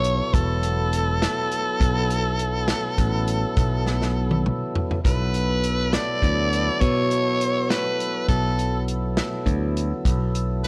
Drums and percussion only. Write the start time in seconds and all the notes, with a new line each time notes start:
0.04 closed hi-hat
0.34 kick, closed hi-hat
0.63 closed hi-hat
0.93 closed hi-hat
1.22 snare, closed hi-hat
1.51 closed hi-hat
1.81 kick, closed hi-hat
2.10 closed hi-hat
2.39 closed hi-hat
2.68 snare, closed hi-hat
2.98 kick, closed hi-hat
3.28 closed hi-hat
3.57 kick, closed hi-hat
3.87 snare
4.02 snare
4.31 high tom
4.46 mid tom
4.75 floor tom
4.91 floor tom
5.05 kick, closed hi-hat
5.34 closed hi-hat
5.64 closed hi-hat
5.93 snare, closed hi-hat
6.23 kick, closed hi-hat
6.53 closed hi-hat
6.81 kick, closed hi-hat
7.11 closed hi-hat
7.41 closed hi-hat
7.70 snare, closed hi-hat
8.00 closed hi-hat
8.28 kick, closed hi-hat
8.59 closed hi-hat
8.88 closed hi-hat
9.17 snare, closed hi-hat
9.46 kick, closed hi-hat
9.77 closed hi-hat
10.05 kick, closed hi-hat
10.35 closed hi-hat
10.64 snare, closed hi-hat